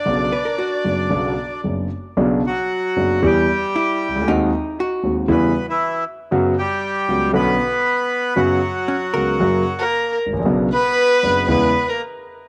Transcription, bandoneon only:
X:1
M:4/4
L:1/16
Q:1/4=116
K:Bm
V:1 name="Bandoneon"
[Dd]12 z4 | z2 [F,F]6 [G,G]8 | z8 [B,B]3 [E,E]3 z2 | z2 [G,G]6 [B,B]8 |
[F,F]8- [F,F]3 [^A,^A]3 z2 | z2 [B,B]6 [B,B]3 [^A,^A]2 z3 |]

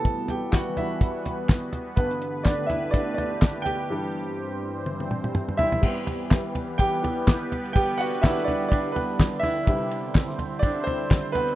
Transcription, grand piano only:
X:1
M:4/4
L:1/8
Q:"Swing 16ths" 1/4=125
K:Em
V:1 name="Grand piano"
[Aa] [Gg] [Ff] [Ee]3 z2 | B2 [Dd] [Ee] [Dd] [Dd]2 [Gg]- | [Gg]6 z [Ee]- | [Ee]3 z [Gg]4 |
[Gg] [Ff] [Ee] [Dd] [Dd] [B,B]2 [Ee]- | [Ee]4 [Dd] [Cc]2 [B,B] |]
V:2 name="Grand piano" clef=bass
[E,G,B,] z6 z | [G,,D,B,]3 z4 z | [G,,E,G,]3 z4 z | [E,G,B,]4- [E,G,B,] [E,G,B,] z2 |
z2 [D,B,D] z4 z | [C,G,E]3 z4 z |]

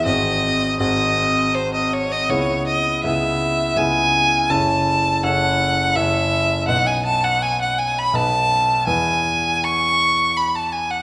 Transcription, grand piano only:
X:1
M:3/4
L:1/8
Q:1/4=82
K:E
V:1 name="Grand piano"
[G,,,^B,FG]2 [G,,,B,FG]4 | [C,,B,EG]2 [C,,B,EG]2 [C,,B,EG]2 | [F,,,CEA]2 [F,,,CEA]2 [F,,,CEA]2 | [B,,,B,DB]4 [B,,,B,DB]2 |
[E,,B,EB]6 |]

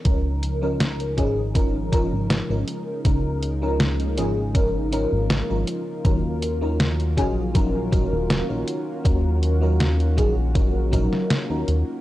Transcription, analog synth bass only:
X:1
M:4/4
L:1/16
Q:1/4=80
K:Db
V:1 name="Analog synth bass" clef=bass
D,,6 A,,,4- A,,, A,,,2 A,,, z2 | D,,6 A,,,4- A,,, A,,,2 A,,, z2 | E,,6 B,,,4- B,,, E,,,2 B,,, z2 | E,,6 B,,,4 B,,, z2 E,, E,, z |]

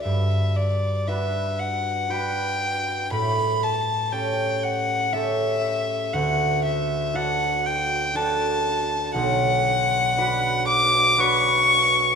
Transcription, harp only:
X:1
M:3/4
L:1/8
Q:1/4=59
K:D
V:1 name="Harp"
[G,,DF]2 [DFB]2 [DFB]2 | A,,2 [CGA]2 [CGA]2 | D,,2 [DFA]2 [DFA]2 | B,,,2 [DFB]2 [DFB]2 |]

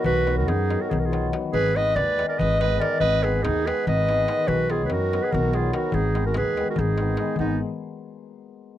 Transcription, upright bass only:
X:1
M:7/8
L:1/8
Q:1/4=144
K:Abm
V:1 name="Upright bass" clef=bass
=B,,,2 ^F,,2 B,,,3 | A,,,2 E,,2 A,,,3 | A,,,2 E,,2 A,,,3 | =B,,,2 ^F,,2 B,,,3 |
A,,,2 E,,2 A,,,3 | A,,, z6 |]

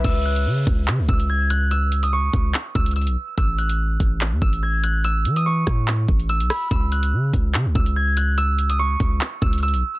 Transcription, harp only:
X:1
M:4/4
L:1/16
Q:1/4=144
K:Bmix
V:1 name="Harp"
e'2 f'8 e'2 g'2 f'2 | e'3 d' c'6 e'2 e'2 z2 | e'2 f'8 e'2 g'2 f'2 | e'3 d' c'8 e'2 b2 |
e'2 f'8 e'2 g'2 f'2 | e'3 d' c'6 e'2 e'2 z2 |]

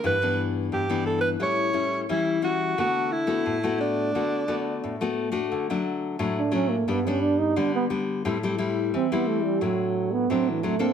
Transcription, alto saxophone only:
X:1
M:4/4
L:1/16
Q:1/4=88
K:D
V:1 name="Alto saxophone"
B2 z2 G2 A B c4 E2 F2 | F2 E4 D8 z2 | z16 | z16 |]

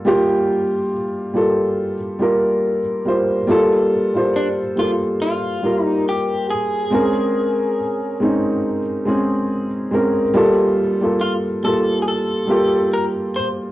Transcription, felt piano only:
X:1
M:4/4
L:1/16
Q:"Swing 16ths" 1/4=70
K:Bb
V:1 name="Felt piano"
[G,B,FG]4 z2 [G,B,FA]3 z [G,B,FB]3 z [G,B,Fc] z | [G,B,FA]2 z [G,B,Fc]2 z [G,B,FA]3 z [G,B,FB]4 z2 | [_A,C_DB]4 z2 [A,CDE]3 z [A,CD_A]3 z [A,CDB] z | [G,B,FA]2 z [G,B,FA]2 z [G,B,FA]3 z [G,B,FG]4 z2 |]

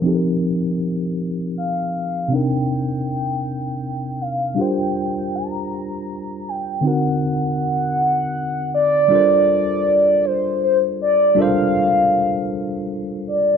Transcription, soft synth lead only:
X:1
M:6/8
L:1/8
Q:3/8=53
K:Gm
V:1 name="Soft synth lead"
z4 f2 | g4- g f | g2 b3 g | ^f4- f d- |
d3 c c d | f4 z d |]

